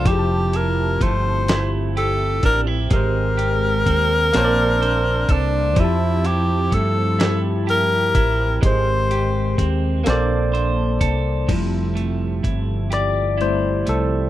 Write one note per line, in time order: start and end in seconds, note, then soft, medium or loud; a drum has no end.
0.00 2.86 F3 medium
0.00 0.15 A#3 medium
0.00 0.16 A4 soft
0.00 0.16 C5 medium
0.05 0.97 F1 medium
0.05 2.89 F3 medium
0.05 2.92 F3 medium
0.05 4.31 C4 medium
0.05 2.87 E4 medium
0.05 2.89 E4 medium
0.05 2.89 G4 medium
0.05 0.58 G4 loud
0.05 2.89 G4 medium
0.05 2.89 A5 medium
0.05 kick loud
0.05 closed hi-hat medium
0.13 0.16 G#4 soft
0.19 2.94 A5 medium
0.53 1.48 E4 medium
0.53 1.04 A#4 medium
0.53 closed hi-hat medium
1.01 2.40 G1 medium
1.01 2.90 A3 medium
1.01 1.70 C5 loud
1.01 kick medium
1.01 closed hi-hat medium
1.48 2.43 E4 medium
1.48 snare loud
1.48 closed hi-hat medium
1.97 3.01 G4 medium
1.97 2.41 A4 loud
1.97 closed hi-hat soft
2.43 2.88 A1 medium
2.43 2.67 D4 medium
2.43 2.62 A#4 loud
2.43 kick medium
2.43 closed hi-hat medium
2.67 3.01 E4 medium
2.90 3.83 G#1 loud
2.90 4.34 G#3 medium
2.90 4.33 G#3 medium
2.90 4.33 G4 medium
2.90 4.35 G4 soft
2.90 5.33 A#4 loud
2.90 4.36 A#4 medium
2.90 kick loud
2.90 closed hi-hat medium
2.96 4.35 C5 medium
3.38 4.43 G4 medium
3.38 closed hi-hat medium
3.86 4.30 D#2 loud
3.86 6.24 C4 medium
3.86 kick medium
3.86 closed hi-hat medium
4.33 5.26 A#1 medium
4.33 5.76 A#3 medium
4.33 5.75 A#3 medium
4.33 5.86 A#3 medium
4.33 5.75 C4 medium
4.33 5.75 D4 medium
4.33 5.78 C5 medium
4.33 5.77 A5 medium
4.33 snare loud
4.33 closed hi-hat medium
4.38 4.43 C#5 medium
4.44 5.82 D5 loud
4.82 8.32 C5 medium
4.82 closed hi-hat soft
5.29 5.77 C2 medium
5.29 5.81 D4 loud
5.29 7.67 A4 medium
5.29 kick medium
5.29 closed hi-hat medium
5.73 6.69 F2 medium
5.73 8.57 F3 medium
5.73 8.63 F3 medium
5.73 8.60 F3 medium
5.73 10.01 C4 medium
5.73 8.60 E4 medium
5.73 8.59 E4 soft
5.73 10.02 G4 medium
5.73 8.60 A5 medium
5.73 kick loud
5.73 closed hi-hat medium
5.79 6.28 E4 loud
5.79 8.61 G4 soft
5.84 8.62 A5 medium
6.25 7.18 E4 medium
6.25 6.75 G4 loud
6.25 closed hi-hat medium
6.71 8.12 G2 medium
6.71 8.61 A3 medium
6.71 7.42 A4 loud
6.71 kick medium
6.71 closed hi-hat medium
7.19 8.14 E4 medium
7.19 snare loud
7.19 closed hi-hat medium
7.67 8.72 G4 medium
7.67 8.60 A#4 loud
7.67 closed hi-hat soft
8.15 8.59 A1 medium
8.15 8.72 E4 medium
8.15 kick loud
8.15 closed hi-hat medium
8.61 9.54 G#1 loud
8.61 10.04 G#3 medium
8.61 10.05 G#3 medium
8.61 10.04 G#3 medium
8.61 10.06 G4 medium
8.61 10.07 A#4 soft
8.61 kick loud
8.61 closed hi-hat medium
8.66 9.67 C5 medium
8.66 10.06 C5 medium
9.11 10.16 G4 medium
9.11 closed hi-hat medium
9.58 10.02 D#2 medium
9.58 12.43 C4 medium
9.58 kick medium
9.58 closed hi-hat medium
10.04 10.98 A#1 loud
10.04 11.57 A#3 medium
10.04 11.48 A#3 medium
10.04 11.47 A#3 medium
10.04 11.47 D4 medium
10.04 11.47 A4 medium
10.04 11.49 A4 medium
10.04 11.50 C5 medium
10.04 snare loud
10.04 closed hi-hat medium
10.10 11.51 D5 loud
10.53 14.03 C5 medium
10.53 closed hi-hat soft
11.01 11.45 C2 medium
11.01 12.90 A4 medium
11.01 kick medium
11.01 closed hi-hat medium
11.48 12.40 F1 medium
11.48 14.30 F3 medium
11.48 12.13 G3 soft
11.48 12.13 A3 soft
11.48 14.30 C4 medium
11.48 12.13 E4 soft
11.48 14.30 G4 medium
11.48 14.30 A4 medium
11.48 14.30 E5 medium
11.48 kick loud
11.48 closed hi-hat medium
11.48 crash medium
11.95 13.85 A3 medium
11.95 closed hi-hat soft
12.43 13.83 G1 medium
12.43 13.36 E4 soft
12.43 kick medium
12.43 closed hi-hat medium
12.91 14.30 G4 medium
12.91 13.42 D5 loud
12.91 cross-stick loud
12.91 closed hi-hat medium
13.38 13.83 G3 soft
13.38 13.84 A3 soft
13.38 14.30 E4 medium
13.38 13.84 E4 soft
13.38 13.89 C5 medium
13.38 closed hi-hat soft
13.86 14.30 C2 medium
13.86 14.30 A3 medium
13.86 14.10 A4 medium
13.86 closed hi-hat medium